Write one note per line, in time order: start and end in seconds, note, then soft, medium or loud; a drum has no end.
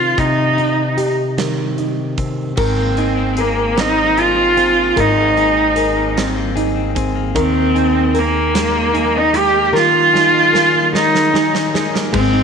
0.00 0.16 C3 medium
0.00 1.37 D#3 medium
0.00 2.17 C4 soft
0.00 0.58 D#4 soft
0.00 0.19 F4 medium
0.00 0.96 G4 soft
0.18 2.57 C3 medium
0.18 1.08 D#4 medium
0.18 kick medium
0.18 closed hi-hat medium
0.58 1.78 D#4 soft
0.58 closed hi-hat soft
0.97 2.57 G4 medium
0.97 closed hi-hat medium
1.37 2.56 D#3 medium
1.37 snare medium
1.37 closed hi-hat medium
1.78 2.98 D#4 soft
1.78 closed hi-hat soft
2.18 3.42 C4 soft
2.18 kick medium
2.18 closed hi-hat soft
2.57 4.93 G#1 medium
2.57 3.76 D#3 medium
2.57 4.96 G#3 medium
2.57 3.42 C4 medium
2.57 3.38 A#4 medium
2.57 kick loud
2.57 crash medium
2.78 3.57 A#3 soft
2.97 4.17 D#4 soft
2.97 3.37 G#4 medium
2.97 closed hi-hat soft
3.17 4.36 C4 medium
3.37 3.81 A#3 medium
3.37 4.17 G#4 medium
3.37 4.96 A#4 medium
3.37 closed hi-hat medium
3.57 3.96 A#3 soft
3.77 4.96 D#3 medium
3.77 4.56 C4 medium
3.77 4.21 D#4 loud
3.77 snare loud
3.77 closed hi-hat medium
3.97 4.76 A#3 soft
4.18 5.35 D#4 medium
4.18 5.01 F4 medium
4.18 4.57 G#4 soft
4.18 closed hi-hat soft
4.37 5.55 C4 soft
4.57 6.16 C4 medium
4.57 5.36 G#4 soft
4.57 closed hi-hat soft
4.77 5.16 A#3 soft
4.96 7.32 G#1 medium
4.96 6.16 D#3 medium
4.96 7.35 G#3 medium
4.96 6.18 D#4 medium
4.96 5.75 A#4 medium
4.96 kick medium
4.96 closed hi-hat medium
5.17 5.96 A#3 soft
5.36 6.56 D#4 medium
5.36 5.76 G#4 medium
5.36 closed hi-hat soft
5.57 6.74 C4 medium
5.76 6.55 G#4 medium
5.76 7.35 A#4 medium
5.76 closed hi-hat medium
5.96 6.36 A#3 soft
6.17 7.36 D#3 medium
6.17 6.95 C4 medium
6.17 snare medium
6.17 closed hi-hat medium
6.36 7.15 A#3 medium
6.56 7.75 D#4 medium
6.56 6.95 G#4 medium
6.56 closed hi-hat soft
6.75 7.44 C4 soft
6.95 7.44 C4 soft
6.95 7.58 G#4 medium
6.95 kick medium
6.95 closed hi-hat medium
7.16 7.55 A#3 soft
7.35 9.71 D#2 loud
7.35 9.72 D#3 medium
7.35 8.55 D#3 medium
7.35 8.14 A#4 medium
7.35 kick loud
7.35 closed hi-hat medium
7.39 8.20 C4 medium
7.55 8.35 A#3 soft
7.75 8.93 D#4 medium
7.75 8.14 G#4 medium
7.75 closed hi-hat soft
7.95 9.14 D#4 medium
8.14 8.94 G#4 medium
8.14 9.73 A#4 medium
8.14 closed hi-hat medium
8.19 9.19 A#3 medium
8.36 8.74 A#3 medium
8.55 9.74 D#3 medium
8.55 9.33 G#3 medium
8.55 snare medium
8.55 closed hi-hat medium
8.75 9.53 A#3 medium
8.94 10.13 D#4 medium
8.94 9.57 G#4 medium
8.94 closed hi-hat soft
9.15 10.34 D#4 medium
9.15 9.37 D#4 medium
9.33 10.92 G#3 medium
9.33 9.75 G4 loud
9.33 closed hi-hat medium
9.54 9.94 A#3 medium
9.73 12.12 D#3 medium
9.73 10.93 D#3 medium
9.73 10.53 A#4 medium
9.73 snare medium
9.77 10.91 F4 loud
9.94 10.73 A#3 medium
10.14 11.33 D#4 medium
10.14 10.53 G#4 medium
10.14 snare medium
10.34 11.54 D#4 medium
10.53 11.33 G#4 medium
10.53 12.43 A#4 medium
10.53 snare medium
10.74 11.13 A#3 medium
10.93 12.13 D#3 medium
10.93 11.74 G#3 medium
10.93 11.80 D#4 medium
10.93 snare medium
11.14 11.93 A#3 medium
11.14 snare medium
11.34 12.33 D#4 medium
11.34 11.74 G#4 medium
11.34 snare medium
11.54 12.43 D#4 soft
11.54 snare medium
11.74 12.13 G#3 medium
11.74 12.37 G#4 medium
11.74 snare medium
11.94 12.33 A#3 medium
11.94 snare medium
12.13 12.43 G#1 medium
12.13 12.43 D#3 medium
12.13 12.43 G#3 medium
12.13 12.43 C4 loud
12.13 kick loud
12.13 crash medium
12.33 12.43 A#3 soft
12.33 12.43 D#4 medium